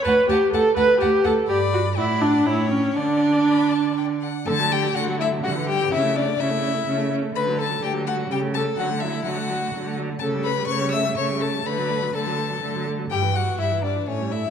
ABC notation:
X:1
M:3/4
L:1/16
Q:1/4=125
K:D
V:1 name="Violin"
a2 a2 a2 a2 a2 a2 | b4 f4 g4 | f4 b2 a2 g2 f2 | a2 g2 f2 e2 f2 g2 |
e2 d2 e6 z2 | b2 a2 g2 f2 g2 a2 | f2 e2 f6 z2 | a2 b2 c'2 e'2 c'2 a2 |
b4 a6 z2 | g2 f2 e2 d2 c2 e2 |]
V:2 name="Violin"
f2 f2 f2 f2 f2 f2 | d4 d4 c4 | d8- d2 z2 | A2 G2 F2 E2 F2 G2 |
E2 D2 E6 z2 | B2 A2 G2 F2 G2 A2 | F2 E2 F6 z2 | A2 B2 c2 e2 c2 A2 |
B4 A6 z2 | G2 F2 E2 D2 C2 E2 |]
V:3 name="Viola"
B2 G2 A2 B2 G2 A2 | G2 F2 E2 D2 E2 C2 | D8- D2 z2 | A, F, A, F, A, F, A, F, G, E, G, E, |
C A, C A, C A, C A, C A, C A, | A, F, A, F, A, F, A, F, G, A, G, A, | F, A, F, A, F, A, F, A, F, A, F, A, | A, G, A, G, A, G, A, G, A, G, A, G, |
A, F, A, F, A, F, A, F, A, F, A, F, | G, E, G, E, G, E, G, E, A, G, A, G, |]
V:4 name="Cello" clef=bass
D,,2 D,,2 D,,2 D,,2 D,,2 D,,2 | G,,4 A,,4 A,,4 | D,8- D,2 z2 | D,4 D,4 D,4 |
C,4 C,4 C,4 | D,4 D,4 C,4 | D,4 D,4 D,4 | C,4 C,4 C,4 |
D,4 D,4 D,4 | G,,4 G,,4 A,,4 |]